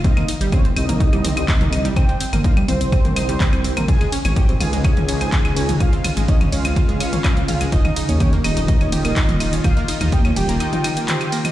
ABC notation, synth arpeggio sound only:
X:1
M:4/4
L:1/16
Q:1/4=125
K:Dblyd
V:1 name="Synth arpeggio sound"
[Cc] [B,B] [Ee] [G,G] [Cc] [Cc] [Cc] [B,B] [Ee] [G,G] [Cc] [Cc] [Cc] [B,B] [Ee] [G,G] | [Cc] [Cc] [Cc] [B,B] [Ee] [G,G] [Cc] [Cc] [Cc] [B,B] [Ee] [G,G] [Cc] [Cc] [Cc] [B,B] | [Ff] [A,A] [Dd] [Dd] [Dd] [Cc] [Ff] [A,A] [Dd] [Dd] [Dd] [Cc] [Ff] [A,A] [Dd] [Dd] | [Dd] [Cc] [Ff] [A,A] [Dd] [Dd] [Dd] [Cc] [Ff] [A,A] [Dd] [Dd] [Dd] [Cc] [Ff] [A,A] |
[Ee] [Ee] [Ee] [Dd] [Gg] [B,B] [Ee] [Ee] [Ee] [Dd] [Gg] [B,B] [Ee] [Ee] [Ee] [Dd] | [Gg] [B,B] [Ee] [Ee] [Ee] [Dd] [Gg] [B,B] [Ee] [Ee] [Ee] [B,B] [cc'] [Gg] [B,B] [Ee] |]